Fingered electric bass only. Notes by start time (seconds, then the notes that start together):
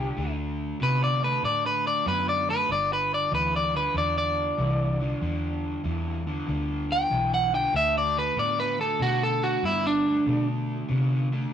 0.17 D2
0.81 C3
1.43 A2
2.06 F#2
2.69 G1
3.32 D2
3.94 E2
4.58 C2
5.21 E2
5.84 E2
6.48 D2
7.11 B1
7.73 D2
8.36 A2
9.00 B2
9.63 G2
10.26 B2
10.89 C3